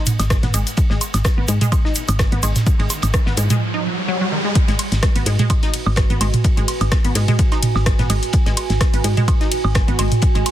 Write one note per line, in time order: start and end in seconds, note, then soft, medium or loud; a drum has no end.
0.06 closed hi-hat medium
0.06 mid tom medium
0.06 ride medium
0.06 shaker medium
0.19 0.39 G#1 loud
0.19 snare soft
0.19 closed hi-hat medium
0.19 high woodblock medium
0.19 shaker soft
0.30 kick loud
0.30 cross-stick medium
0.30 snare loud
0.30 closed hi-hat soft
0.30 ride medium
0.30 shaker soft
0.43 0.52 G#1 loud
0.43 0.47 B3 medium
0.43 snare medium
0.43 closed hi-hat soft
0.43 mid tom medium
0.54 0.64 G#1 medium
0.54 0.59 G#3 medium
0.54 closed hi-hat medium
0.54 ride medium
0.54 high woodblock medium
0.54 shaker loud
0.67 closed hi-hat medium
0.67 shaker soft
0.77 kick loud
0.77 closed hi-hat soft
0.77 ride medium
0.77 riser medium
0.77 shaker soft
0.90 0.99 G#1 loud
0.90 0.94 G#3 medium
0.90 snare medium
1.01 closed hi-hat medium
1.01 ride medium
1.01 low woodblock soft
1.01 shaker loud
1.14 1.23 G#1 loud
1.14 snare soft
1.14 closed hi-hat medium
1.14 high woodblock medium
1.14 shaker soft
1.24 kick loud
1.24 cross-stick medium
1.24 snare loud
1.24 closed hi-hat soft
1.24 ride medium
1.24 shaker soft
1.38 1.46 G#1 medium
1.38 1.42 B3 medium
1.48 1.59 G#2 medium
1.48 1.51 G#3 medium
1.48 closed hi-hat medium
1.48 ride medium
1.48 shaker medium
1.61 1.65 G#3 loud
1.61 closed hi-hat medium
1.61 mid tom medium
1.61 shaker medium
1.72 kick loud
1.72 closed hi-hat soft
1.72 ride medium
1.72 high woodblock medium
1.72 low woodblock medium
1.72 shaker soft
1.85 1.91 D#4 medium
1.85 snare soft
1.95 closed hi-hat medium
1.95 ride medium
1.95 shaker medium
2.08 2.28 G#1 loud
2.08 closed hi-hat medium
2.08 high woodblock medium
2.08 shaker medium
2.19 kick loud
2.19 cross-stick medium
2.19 snare loud
2.19 closed hi-hat soft
2.19 ride medium
2.19 shaker soft
2.32 2.41 G#1 loud
2.32 2.36 B3 medium
2.32 closed hi-hat soft
2.43 2.53 G#1 loud
2.43 2.48 G#3 medium
2.43 closed hi-hat medium
2.43 ride medium
2.43 low woodblock medium
2.43 shaker medium
2.56 snare medium
2.56 closed hi-hat medium
2.56 mid tom medium
2.56 shaker soft
2.67 kick loud
2.67 closed hi-hat soft
2.67 ride medium
2.67 shaker soft
2.79 2.88 G#1 loud
2.79 2.83 G#3 medium
2.79 ride medium
2.90 snare medium
2.90 closed hi-hat medium
2.90 low woodblock soft
2.90 shaker loud
3.02 3.12 G#1 loud
3.02 closed hi-hat medium
3.02 ride medium
3.02 high woodblock medium
3.02 shaker soft
3.14 kick loud
3.14 cross-stick medium
3.14 closed hi-hat soft
3.14 ride medium
3.14 shaker soft
3.26 3.35 G#1 medium
3.26 3.30 B3 medium
3.26 snare medium
3.37 3.48 G#2 loud
3.37 3.40 G#3 medium
3.37 closed hi-hat medium
3.37 ride medium
3.37 shaker medium
3.50 3.54 G#3 loud
3.50 closed hi-hat medium
3.50 mid tom loud
3.50 shaker medium
3.74 3.80 D#4 medium
4.08 4.13 F#3 loud
4.21 4.25 F#3 medium
4.32 4.35 D#3 medium
4.45 4.49 G#3 medium
4.55 10.51 F#4 medium
4.55 kick loud
4.55 closed hi-hat medium
4.55 ride medium
4.68 4.77 G#1 loud
4.68 4.72 G#3 medium
4.68 snare medium
4.68 closed hi-hat soft
4.79 closed hi-hat medium
4.79 ride medium
4.79 low woodblock medium
4.92 5.01 G#1 loud
4.92 snare soft
4.92 closed hi-hat soft
5.03 kick loud
5.03 cross-stick loud
5.03 snare loud
5.03 closed hi-hat medium
5.03 ride loud
5.16 5.24 G#1 medium
5.16 5.19 B3 medium
5.16 closed hi-hat soft
5.16 ride soft
5.20 10.51 B4 medium
5.26 5.37 G#2 loud
5.26 5.29 G#3 medium
5.26 closed hi-hat loud
5.26 ride medium
5.39 5.43 G#3 loud
5.39 closed hi-hat soft
5.39 mid tom medium
5.50 kick loud
5.50 closed hi-hat medium
5.50 ride medium
5.50 high woodblock medium
5.50 low woodblock medium
5.63 5.69 D#4 medium
5.63 snare soft
5.63 closed hi-hat soft
5.72 10.51 G#5 medium
5.72 closed hi-hat loud
5.72 ride medium
5.86 6.05 G#1 loud
5.86 high woodblock medium
5.96 kick loud
5.96 cross-stick loud
5.96 snare loud
5.96 closed hi-hat medium
5.96 ride medium
6.10 6.19 G#1 loud
6.10 6.14 B3 medium
6.10 closed hi-hat soft
6.21 6.31 G#1 loud
6.21 6.25 G#3 medium
6.21 closed hi-hat loud
6.21 ride medium
6.21 low woodblock medium
6.34 closed hi-hat soft
6.34 mid tom medium
6.44 kick loud
6.44 closed hi-hat medium
6.44 ride medium
6.57 6.66 G#1 loud
6.57 6.61 G#3 medium
6.57 closed hi-hat soft
6.68 closed hi-hat medium
6.68 ride medium
6.68 low woodblock medium
6.81 6.90 G#1 loud
6.81 closed hi-hat soft
6.81 high woodblock medium
6.92 kick loud
6.92 cross-stick loud
6.92 snare loud
6.92 closed hi-hat medium
6.92 ride medium
7.05 7.13 G#1 medium
7.05 7.08 B3 medium
7.05 closed hi-hat soft
7.05 ride soft
7.15 7.26 G#2 medium
7.15 7.18 G#3 medium
7.15 snare soft
7.15 closed hi-hat loud
7.15 ride medium
7.28 7.32 G#3 loud
7.28 closed hi-hat soft
7.28 mid tom loud
7.39 kick loud
7.39 closed hi-hat medium
7.39 ride medium
7.52 7.58 D#4 medium
7.52 snare soft
7.52 closed hi-hat soft
7.52 low woodblock medium
7.62 closed hi-hat loud
7.62 mid tom medium
7.62 ride medium
7.75 7.94 G#1 loud
7.75 snare medium
7.75 high woodblock medium
7.86 kick loud
7.86 cross-stick loud
7.86 snare loud
7.86 closed hi-hat medium
7.86 ride loud
7.99 8.08 G#1 loud
7.99 8.03 B3 medium
7.99 snare medium
7.99 closed hi-hat soft
7.99 mid tom medium
8.10 8.20 G#1 loud
8.10 8.14 G#3 medium
8.10 closed hi-hat loud
8.10 ride medium
8.10 high woodblock medium
8.23 closed hi-hat soft
8.33 kick loud
8.33 closed hi-hat medium
8.33 ride medium
8.46 8.55 G#1 loud
8.46 8.50 G#3 medium
8.46 snare medium
8.46 closed hi-hat soft
8.57 closed hi-hat loud
8.57 ride medium
8.57 low woodblock medium
8.70 8.79 G#1 loud
8.70 snare soft
8.70 closed hi-hat soft
8.81 kick loud
8.81 cross-stick medium
8.81 snare loud
8.81 closed hi-hat medium
8.81 ride medium
8.93 9.02 G#1 medium
8.93 8.97 B3 medium
8.93 closed hi-hat soft
8.93 ride soft
9.04 9.15 G#2 medium
9.04 9.07 G#3 medium
9.04 closed hi-hat loud
9.04 ride medium
9.17 9.21 G#3 loud
9.17 closed hi-hat soft
9.17 mid tom medium
9.28 kick loud
9.28 closed hi-hat medium
9.28 ride medium
9.28 high woodblock medium
9.28 low woodblock medium
9.41 9.47 D#4 medium
9.41 snare soft
9.41 closed hi-hat soft
9.52 closed hi-hat loud
9.52 ride medium
9.64 9.83 G#1 loud
9.64 high woodblock medium
9.75 kick loud
9.75 cross-stick loud
9.75 snare loud
9.75 closed hi-hat medium
9.75 ride medium
9.88 9.97 G#1 loud
9.88 9.92 B3 medium
9.88 closed hi-hat soft
9.99 10.09 G#1 loud
9.99 10.03 G#3 medium
9.99 closed hi-hat loud
9.99 ride medium
9.99 low woodblock medium
10.12 closed hi-hat soft
10.12 mid tom medium
10.22 kick loud
10.22 closed hi-hat medium
10.22 ride medium
10.35 10.44 G#1 loud
10.35 10.39 G#3 medium
10.35 closed hi-hat soft
10.46 closed hi-hat loud
10.46 ride medium
10.46 low woodblock medium